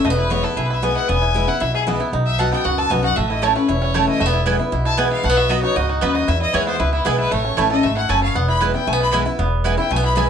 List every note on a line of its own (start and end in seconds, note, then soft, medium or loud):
0.00 0.18 E4 medium
0.05 0.42 E1 loud
0.05 0.54 E2 loud
0.05 0.10 A3 medium
0.05 0.17 D#5 medium
0.10 0.30 B3 medium
0.17 0.43 E4 medium
0.17 0.32 B4 medium
0.30 0.43 E3 medium
0.30 0.44 G#3 medium
0.30 0.83 B3 medium
0.30 0.44 B3 medium
0.30 0.42 E4 loud
0.30 0.45 C#5 loud
0.44 0.57 B3 soft
0.44 0.56 E4 medium
0.44 0.58 A4 medium
0.56 0.94 B1 medium
0.56 1.06 B2 medium
0.56 0.69 E4 medium
0.56 0.67 G#4 medium
0.65 0.75 B4 medium
0.70 0.95 E4 medium
0.70 0.85 E5 medium
0.82 1.07 E3 medium
0.82 1.08 G#3 medium
0.82 1.08 B3 medium
0.82 1.08 B3 loud
0.82 1.08 E4 loud
0.82 0.95 G#5 loud
0.96 1.21 E4 medium
0.96 1.10 F#5 loud
1.08 1.47 E1 medium
1.08 1.58 E2 medium
1.08 1.46 B3 medium
1.08 1.49 G#5 loud
1.22 1.34 E4 medium
1.34 1.47 E3 medium
1.34 1.47 G#3 medium
1.34 1.48 B3 medium
1.34 1.47 E4 medium
1.34 1.46 E4 medium
1.47 1.61 B3 soft
1.47 1.60 E4 medium
1.47 1.62 F#5 loud
1.60 1.99 B1 medium
1.60 2.10 B2 medium
1.60 1.73 E4 medium
1.60 1.74 E5 medium
1.74 1.99 E4 medium
1.74 1.82 G#4 loud
1.87 1.99 E3 medium
1.87 2.00 G#3 medium
1.87 2.00 B3 medium
1.87 2.13 B3 medium
1.87 1.99 E4 loud
2.00 2.13 B3 soft
2.00 2.12 E4 medium
2.00 2.13 E4 medium
2.13 2.50 B1 loud
2.13 2.62 B2 medium
2.13 2.50 D#4 medium
2.26 2.41 E5 medium
2.38 2.51 F#3 medium
2.38 2.51 B3 medium
2.38 2.52 D#4 medium
2.38 2.50 F#4 loud
2.38 2.75 A4 medium
2.38 2.51 F#5 loud
2.51 2.88 B3 medium
2.51 2.65 D#4 medium
2.51 2.64 F#4 medium
2.51 2.66 G5 loud
2.64 2.87 C#2 medium
2.64 3.14 F#2 medium
2.64 3.01 F#4 medium
2.64 2.79 F#5 medium
2.78 3.14 A4 medium
2.78 2.92 A5 loud
2.90 3.13 B1 medium
2.90 3.03 F#3 medium
2.90 3.03 B3 medium
2.90 3.17 B3 medium
2.90 3.03 D#4 medium
2.90 3.02 F#4 loud
2.90 3.03 G#5 medium
3.03 3.16 D#4 soft
3.03 3.16 F#4 medium
3.03 3.17 F#4 medium
3.03 3.18 F#5 medium
3.16 3.54 A1 loud
3.16 3.66 A2 medium
3.16 3.42 A3 medium
3.16 3.28 E5 medium
3.29 3.66 E4 medium
3.29 3.44 D#5 medium
3.42 3.55 E3 medium
3.42 3.52 A3 medium
3.42 3.55 A3 medium
3.42 3.79 A3 medium
3.42 3.55 C#4 medium
3.42 3.52 E4 medium
3.42 3.54 E4 medium
3.42 3.57 C#5 medium
3.42 3.52 C#5 loud
3.42 3.52 A5 medium
3.55 3.81 C#4 medium
3.55 3.69 C#4 soft
3.55 3.68 E4 medium
3.55 3.70 B4 medium
3.69 4.06 E1 medium
3.69 4.18 E2 medium
3.69 4.05 E4 medium
3.69 4.08 C#5 medium
3.82 4.18 C#4 medium
3.94 4.19 E3 medium
3.94 4.04 A3 medium
3.94 4.19 A3 medium
3.94 4.20 C#4 medium
3.94 4.04 E4 medium
3.94 4.20 E4 loud
3.94 4.04 C#5 loud
3.94 4.04 A5 loud
4.08 4.20 E4 medium
4.08 4.23 D#5 loud
4.20 4.58 E1 loud
4.20 4.70 E2 medium
4.20 4.26 A3 medium
4.20 4.47 E5 medium
4.26 4.45 B3 medium
4.33 4.58 E4 medium
4.46 4.59 E3 medium
4.46 4.59 G#3 medium
4.46 4.55 B3 medium
4.46 4.98 B3 medium
4.46 4.59 B3 medium
4.46 4.55 E4 medium
4.46 4.58 E4 loud
4.46 4.56 B4 medium
4.46 4.56 G#5 medium
4.59 4.72 B3 medium
4.59 4.72 E4 medium
4.59 4.71 E4 medium
4.72 5.10 B1 medium
4.72 5.22 B2 medium
4.72 4.84 E4 medium
4.85 5.10 E4 medium
4.85 4.99 A5 loud
4.97 5.22 E3 medium
4.97 5.23 G#3 medium
4.97 5.07 B3 medium
4.97 5.24 B3 medium
4.97 5.23 B3 loud
4.97 5.07 E4 medium
4.97 5.23 E4 loud
4.97 5.08 B4 loud
4.97 5.11 G#5 medium
4.97 5.08 G#5 loud
5.11 5.24 E4 medium
5.11 5.26 F5 loud
5.23 5.62 B1 loud
5.23 5.73 B2 medium
5.23 5.29 A3 medium
5.23 5.39 F#5 loud
5.29 5.49 B3 medium
5.37 5.74 F#4 medium
5.37 5.51 E5 loud
5.49 5.62 F#3 medium
5.49 5.59 B3 medium
5.49 5.62 B3 medium
5.49 5.87 B3 medium
5.49 5.63 D#4 medium
5.49 5.59 F#4 medium
5.49 5.61 F#4 loud
5.49 5.62 D#5 loud
5.49 5.59 D#5 medium
5.49 5.60 B5 loud
5.63 5.88 D#4 medium
5.63 5.76 D#4 soft
5.63 5.75 F#4 medium
5.63 5.77 C#5 loud
5.76 5.98 C#2 medium
5.76 6.01 G#2 medium
5.76 6.13 F#4 medium
5.76 5.89 D#5 loud
5.89 6.25 D#4 medium
5.89 6.03 F#4 medium
6.01 6.24 D#2 medium
6.01 6.27 F#2 medium
6.01 6.11 B3 loud
6.01 6.28 B3 medium
6.01 6.11 F#4 loud
6.01 6.16 B4 medium
6.01 6.11 D#5 loud
6.01 6.11 B5 loud
6.15 6.28 F#4 medium
6.15 6.30 D#5 loud
6.28 6.47 E2 loud
6.28 6.77 E2 medium
6.28 6.40 E4 medium
6.28 6.40 E5 loud
6.41 6.52 E4 medium
6.41 6.56 D#5 loud
6.53 6.76 D#2 medium
6.53 6.78 E3 medium
6.53 6.78 G#3 medium
6.53 6.63 B3 medium
6.53 6.79 B3 loud
6.53 6.78 E4 medium
6.53 6.63 E4 medium
6.53 6.79 E4 loud
6.53 6.63 B4 loud
6.53 6.66 C#5 loud
6.53 6.63 G#5 medium
6.67 7.03 B3 medium
6.67 6.81 C5 medium
6.80 7.02 C#2 medium
6.80 7.29 B2 medium
6.80 6.92 E4 medium
6.80 6.92 B4 loud
6.93 7.17 E4 medium
6.93 7.07 E4 medium
7.05 7.28 B1 medium
7.05 7.30 E3 loud
7.05 7.30 G#3 loud
7.05 7.14 B3 medium
7.05 7.31 B3 medium
7.05 7.31 B3 loud
7.05 7.15 E4 loud
7.05 7.31 E4 loud
7.05 7.18 G#4 medium
7.05 7.15 B4 loud
7.05 7.15 G#5 loud
7.18 7.31 E4 medium
7.18 7.32 B4 loud
7.31 7.50 A1 medium
7.31 7.81 A2 medium
7.31 7.68 A3 medium
7.31 7.70 C#5 medium
7.45 7.81 C#4 medium
7.57 7.80 A1 medium
7.57 7.70 E3 medium
7.57 7.66 A3 medium
7.57 7.70 A3 medium
7.57 7.71 C#4 medium
7.57 7.67 E4 medium
7.57 7.96 E4 medium
7.57 7.69 E4 medium
7.57 7.67 C#5 medium
7.57 7.67 A5 medium
7.70 7.83 C#4 soft
7.70 7.83 E4 medium
7.70 8.07 A4 medium
7.70 7.85 D#5 loud
7.83 8.06 G#1 medium
7.83 8.08 G#2 medium
7.83 8.20 A3 medium
7.83 7.96 E5 loud
7.96 8.48 E4 medium
7.96 8.11 F#5 loud
8.09 8.32 F#1 medium
8.09 8.34 F#2 medium
8.09 8.18 A3 medium
8.09 8.19 E4 medium
8.09 8.35 A4 medium
8.09 8.19 C#5 loud
8.09 8.22 G#5 loud
8.09 8.19 A5 medium
8.22 8.35 C#4 medium
8.22 8.37 F5 loud
8.35 8.73 E1 loud
8.35 8.85 E2 medium
8.35 8.87 B3 medium
8.35 8.48 F#5 medium
8.48 8.60 E4 medium
8.48 8.56 B5 loud
8.60 8.74 E3 medium
8.60 8.74 G#3 loud
8.60 8.70 B3 medium
8.60 8.74 B3 loud
8.60 8.70 E4 medium
8.60 8.73 E4 medium
8.60 8.70 B4 medium
8.60 8.71 G#5 medium
8.74 8.87 B3 medium
8.74 8.86 E4 medium
8.74 8.99 E4 medium
8.74 8.89 G5 medium
8.87 9.25 B1 medium
8.87 9.37 B2 medium
8.87 8.93 A3 medium
8.87 9.00 G#5 loud
8.93 9.13 B3 medium
9.00 9.12 E4 medium
9.00 9.13 B5 loud
9.12 9.25 E3 medium
9.12 9.26 G#3 medium
9.12 9.22 B3 loud
9.12 9.26 B3 loud
9.12 9.25 E4 medium
9.12 9.22 E4 loud
9.12 9.24 E4 loud
9.12 9.22 B4 loud
9.12 9.23 G#5 loud
9.25 9.39 B3 medium
9.25 9.38 E4 medium
9.25 9.62 E4 medium
9.39 9.76 E1 medium
9.39 9.88 E2 medium
9.39 9.75 B3 medium
9.64 9.77 E3 medium
9.64 9.78 G#3 medium
9.64 9.74 B3 medium
9.64 9.78 B3 medium
9.64 9.77 E4 medium
9.64 9.74 E4 medium
9.64 9.76 E4 medium
9.64 9.74 B4 loud
9.64 9.74 G#5 loud
9.77 9.91 B3 soft
9.77 9.90 E4 medium
9.77 10.03 E4 medium
9.77 9.93 G5 loud
9.91 10.28 B1 medium
9.91 10.30 B2 medium
9.91 9.96 A3 medium
9.91 10.04 G#5 loud
9.96 10.17 B3 medium
10.04 10.16 E4 medium
10.04 10.16 B5 loud
10.16 10.29 E3 medium
10.16 10.29 G#3 loud
10.16 10.29 B3 loud
10.16 10.26 B3 medium
10.16 10.28 E4 loud
10.16 10.26 E4 medium
10.16 10.29 E4 medium
10.16 10.26 B4 medium
10.16 10.26 G#5 loud